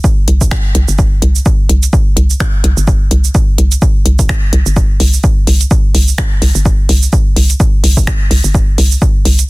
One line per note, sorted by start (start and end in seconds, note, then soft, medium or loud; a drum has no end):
0.04 kick loud
0.04 cabasa soft
0.28 0.46 C2 medium
0.28 closed hi-hat medium
0.41 kick medium
0.41 cabasa medium
0.51 finger snap loud
0.51 kick loud
0.51 cabasa soft
0.75 0.85 C2 medium
0.75 closed hi-hat medium
0.88 1.06 G1 medium
0.88 cabasa medium
0.99 kick loud
0.99 cabasa soft
1.22 1.41 C2 loud
1.22 closed hi-hat loud
1.36 cabasa medium
1.46 kick loud
1.46 cabasa soft
1.69 1.88 C2 medium
1.69 closed hi-hat medium
1.83 closed hi-hat soft
1.83 cabasa medium
1.93 kick loud
1.93 cabasa soft
2.17 2.35 C2 medium
2.17 closed hi-hat loud
2.30 cabasa medium
2.40 finger snap loud
2.40 kick loud
2.40 cabasa soft
2.64 2.74 C2 loud
2.64 closed hi-hat loud
2.77 2.94 G1 medium
2.77 cabasa medium
2.87 kick loud
2.87 cabasa soft
3.11 3.30 C2 medium
3.11 closed hi-hat medium
3.24 cabasa soft
3.35 kick loud
3.35 cabasa soft
3.58 3.77 C2 medium
3.58 closed hi-hat medium
3.72 closed hi-hat soft
3.72 cabasa medium
3.82 kick loud
3.82 cabasa soft
4.06 4.24 C2 medium
4.06 closed hi-hat loud
4.19 kick medium
4.19 closed hi-hat soft
4.19 cabasa soft
4.29 finger snap loud
4.29 kick loud
4.29 cabasa soft
4.53 4.63 C2 medium
4.53 closed hi-hat loud
4.66 4.83 G1 medium
4.66 cabasa medium
4.76 kick loud
4.76 cabasa soft
5.00 5.19 C2 loud
5.00 open hi-hat medium
5.13 cabasa medium
5.24 kick loud
5.24 cabasa soft
5.47 5.66 C2 medium
5.47 open hi-hat medium
5.61 closed hi-hat soft
5.61 cabasa medium
5.71 kick loud
5.71 cabasa soft
5.95 6.13 C2 medium
5.95 open hi-hat medium
6.08 cabasa medium
6.18 finger snap loud
6.18 kick loud
6.18 cabasa soft
6.42 6.52 C2 medium
6.42 open hi-hat medium
6.55 6.72 G1 medium
6.55 cabasa medium
6.65 kick loud
6.65 cabasa soft
6.89 7.08 C2 loud
6.89 open hi-hat medium
7.03 cabasa medium
7.13 kick loud
7.13 cabasa soft
7.36 7.55 C2 medium
7.36 open hi-hat medium
7.50 closed hi-hat soft
7.50 cabasa medium
7.60 kick loud
7.60 cabasa soft
7.84 8.02 C2 medium
7.84 open hi-hat medium
7.97 kick medium
7.97 cabasa medium
8.07 finger snap loud
8.07 kick loud
8.07 cabasa soft
8.31 8.41 C2 medium
8.31 open hi-hat medium
8.44 8.61 G1 medium
8.44 cabasa medium
8.54 kick loud
8.54 cabasa soft
8.78 8.97 C2 loud
8.78 open hi-hat medium
8.92 cabasa medium
9.02 kick loud
9.02 cabasa soft
9.25 9.44 C2 medium
9.25 open hi-hat medium
9.39 closed hi-hat soft
9.39 cabasa medium